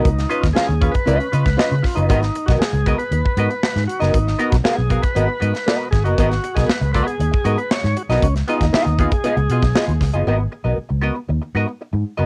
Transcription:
<<
  \new Staff \with { instrumentName = "Hollow-body jazz guitar" } { \time 4/4 \key gis \dorian \tempo 4 = 118 r8 <cis' eis' b' dis''>16 r16 <cis' eis' b' eis''>16 r16 <cis' eis' b' eis''>16 r16 <cis' eis' b' dis''>8 <cis' eis' b' dis''>16 r16 <cis' eis' b' dis''>16 r8 <cis' eis' b' dis''>16 | <b fis' ais' dis''>16 r8 <b fis' ais' dis''>16 r8 <b fis' ais' dis''>16 r8. <b fis' ais' dis''>16 r4 <b fis' ais' dis''>16 | r8 <b fis' ais' dis''>16 r16 <b fis' ais' eis''>16 r16 <b fis' ais' eis''>16 r16 <b fis' ais' dis''>16 r16 <b fis' ais' dis''>16 r16 <b fis' ais' dis''>8 r16 <b fis' ais' dis''>16 | <b fis' ais' dis''>16 r8 <b fis' ais' dis''>16 r8 <b fis' ais' dis''>8 r8 <b fis' ais' dis''>16 r4 <b fis' ais' dis''>16 |
r8 <b eis' gis' dis''>16 r16 <b eis' gis' eis''>8 <b eis' gis' eis''>16 r16 <b eis' gis' dis''>16 r16 <b eis' gis' dis''>16 r16 <b eis' gis' dis''>16 r8 <b eis' gis' dis''>16 | <b fis' ais' dis''>16 r8 <b fis' ais' dis''>16 r8 <b fis' ais' dis''>16 r8. <b fis' ais' dis''>16 r4 <b fis' ais' dis''>16 | }
  \new Staff \with { instrumentName = "Tonewheel organ" } { \time 4/4 \key gis \dorian dis'8. eis'16 gis'8. b'4.~ b'16 eis'16 dis'16~ | dis'8. fis'16 gis'8. b'4.~ b'16 fis'16 dis'16~ | dis'8. fis'16 gis'8. b'4.~ b'16 gis'16 fis'16~ | fis'8. gis'16 b'8 b'16 gis'4 b'16 cis''8 fis'16 dis'16 |
cis'8 dis'4 dis'16 gis'4. r8. | r1 | }
  \new Staff \with { instrumentName = "Fingered electric bass" } { \clef bass \time 4/4 \key gis \dorian cis,8 r16 dis,16 r16 dis,8 r16 cis,16 r16 cis16 cis,16 r16 cis16 r16 fis,,16 | gis,,8 r16 b,,16 r16 cis,8 r16 dis,16 r16 gis,16 r8 gis,16 r16 fis,,16 | gis,,8 r16 b,,16 r16 b,,8 r16 gis,,16 r16 gis,16 r8. gis,,16 fis,,16 | gis,,8 r16 b,,16 r16 cis,8 r16 dis,16 r16 gis,16 r8 gis,16 r16 b,,16 |
cis,8 r16 dis,16 r16 dis,8 r8 cis,16 b,16 b,,16 r16 dis,16 cis,16 fis,,16 | gis,,8 r16 b,,16 r16 cis,8 r16 dis,16 r16 gis,16 r8 gis,16 r16 fis,,16 | }
  \new DrumStaff \with { instrumentName = "Drums" } \drummode { \time 4/4 <hh bd>16 <hh sn>16 hh16 <hh bd sn>16 sn16 hh16 <hh bd>16 <hh bd>16 hh16 hh16 hh16 <hh bd sn>16 sn16 hh16 <hho bd sn>16 hh16 | <hh bd>16 <hh sn>16 hh16 <hh bd sn>16 sn16 hh16 <hh bd>16 hh16 hh16 bd16 hh16 hh16 sn16 <hh sn>16 hh16 <hh sn>16 | <hh bd>16 sn16 hh16 <hh bd sn>16 sn8 <hh bd>16 <hh bd>16 hh8 hh16 <hh sn>16 sn8 <hh bd sn>16 hh16 | <hh bd>16 <hh sn>16 hh16 <hh bd sn>16 sn16 hh16 <hh bd>16 hh16 hh16 <hh bd>16 hh16 hh16 sn16 <hh sn>16 hh16 <hh sn>16 |
<hh bd>16 <hh sn>16 hh16 <hh bd sn>16 sn16 hh16 <hh bd>16 <hh bd>16 hh16 hh16 hh16 <hh bd sn>16 sn16 hh16 <hho bd sn>16 hh16 | r4 r4 r4 r4 | }
>>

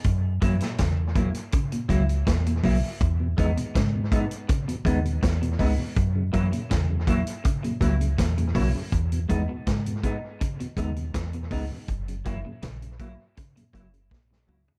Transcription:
<<
  \new Staff \with { instrumentName = "Clean electric guitar" } { \time 4/4 \key e \lydian \tempo 4 = 81 r8 <fis ais e'>8 r8 <fis ais e'>8 r8 <fis ais e'>8 r8 <fis ais e'>8 | r8 <gis b dis'>8 r8 <gis b dis'>8 r8 <gis b dis'>8 r8 <gis b dis'>8 | r8 <fis ais e'>8 r8 <fis ais e'>8 r8 <fis ais e'>8 r8 <fis ais e'>8 | r8 <gis b dis'>8 r8 <gis b dis'>8 r8 <gis b dis'>8 r8 <gis b dis'>8 |
r8 <fis ais e'>8 r8 <fis ais e'>8 r8 <fis ais e'>8 r8 <fis ais e'>8 | }
  \new Staff \with { instrumentName = "Tonewheel organ" } { \time 4/4 \key e \lydian r1 | r8 <gis dis' e'>8 r8 <gis dis' e'>8 r8 <gis dis' e'>8 r8 <gis dis' e'>8 | r8 <ais e' fis'>8 r8 <ais e' fis'>8 r8 <ais e' fis'>8 r8 <ais e' fis'>8 | r8 <gis dis' e'>8 r8 <gis dis' e'>8 r8 <gis dis' e'>8 r8 <gis dis' e'>8 |
r8 <ais e' fis'>8 r8 <ais e' fis'>8 r8 <ais e' fis'>8 r8 <ais e' fis'>8 | }
  \new Staff \with { instrumentName = "Tonewheel organ" } { \clef bass \time 4/4 \key e \lydian r1 | r16 <e, b,>16 r16 <e, b,>16 r16 <e, b,>16 r8. <e, b,>16 r16 <e, b,>16 r16 <e, b,>16 r16 <e, b,>16 | r16 <fis, cis>16 r16 <fis, cis>16 r16 <fis, cis>16 r8. <fis, cis>16 r16 <fis, cis>16 r16 <fis, cis>16 r16 <fis, cis>16 | r16 <e, b,>16 r16 <e, b,>16 r16 <e, b,>16 r8. <e, b,>16 r16 <e, b,>16 r16 <e, b,>16 r16 <e, b,>16 |
r16 <fis, cis>16 r16 <fis, cis>16 r16 <fis, cis>16 r8. <fis, cis>16 r16 <fis, cis>16 r16 <fis, cis>16 r16 <fis, cis>16 | }
  \new Staff \with { instrumentName = "Clean electric guitar" } { \clef bass \time 4/4 \key e \lydian r8 e16 ais,16 cis16 r16 ais,16 r16 cis16 ais,16 cis16 r16 ais,16 ais,16 cis16 r16 | r8 dis16 b,16 cis16 r16 b,16 r16 cis16 b,16 cis16 r16 b,16 b,16 cis16 r16 | r8 e16 ais,16 cis16 r16 ais,16 r16 cis16 ais,16 cis16 r16 ais,16 ais,16 cis16 r16 | r8 dis16 b,16 cis16 r16 b,16 r16 cis16 b,16 cis16 r16 b,16 b,16 cis16 r16 |
r8 e16 ais,16 cis16 r16 ais,16 r16 cis16 ais,16 cis16 r16 ais,16 ais,16 cis16 r16 | }
  \new Staff \with { instrumentName = "Fingered electric bass" } { \clef bass \time 4/4 \key e \lydian fis,8 fis,16 r16 e,8. r8. cis,8 e,8 b,,16 r16 | e,8 e,16 r16 gis,8. r8. dis,8 e,8 cis,16 r16 | fis,8 fis,16 r16 e,8. r8. cis,8 e,8 b,,16 r16 | e,8 e,16 r16 gis,8. r8. dis,8 e,8 cis,16 r16 |
fis,,8 fis,,16 r16 ais,,8. r8. fis,,8 ais,,8 cis,16 r16 | }
  \new DrumStaff \with { instrumentName = "Drums" } \drummode { \time 4/4 <hh bd>8 <hh bd>16 <hh sn>16 <hh bd sn>8 <hh bd>16 hh16 <hh bd>16 hh16 <hh bd>16 hh16 <hh bd sn>16 hh16 <hho bd>8 | <hh bd>8 <hh bd>16 hh16 <hh bd sn>8 <hh bd>16 hh16 <hh bd>16 hh16 <hh bd>16 hh16 <hh bd sn>16 hh16 <hho bd>8 | <hh bd>8 <hh bd>16 hh16 <hh bd sn>8 <hh bd>16 hh16 <hh bd>16 hh16 <hh bd>16 hh16 <hh bd sn>16 hh16 <hho bd>8 | <hh bd>16 hh16 <hh bd>8 <hh bd sn>16 hh16 <hh bd>8 <hh bd>16 hh16 <hh bd>16 hh16 <hh bd sn>16 hh16 <hho bd>8 |
<hh bd>16 hh16 <hh bd>8 <hh bd sn>16 hh16 <hh bd>8 <hh bd>16 hh16 <hh bd>16 hh16 <bd sn>16 sn16 toml16 tomfh16 | }
>>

